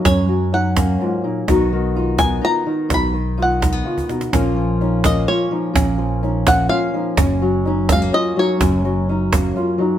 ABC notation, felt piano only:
X:1
M:3/4
L:1/8
Q:1/4=126
K:Gb
V:1 name="Felt piano"
D2 E D F E | E2 F E F E | E2 F E F E | D2 E D F E |
D2 E D F E | D2 E D F E | D2 E D F E |]